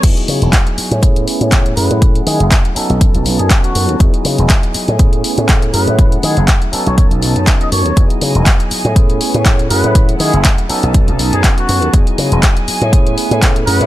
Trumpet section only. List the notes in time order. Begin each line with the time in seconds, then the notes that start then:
1.77 B4
2.26 G#4
3.39 G#4
3.64 F#4
5.74 B4
6.23 G#4
6.87 C#5
6.98 C#5
7.61 D#5
7.72 C#5
9.70 B4
10.20 G#4
11.32 G#4
11.57 F#4
13.67 B4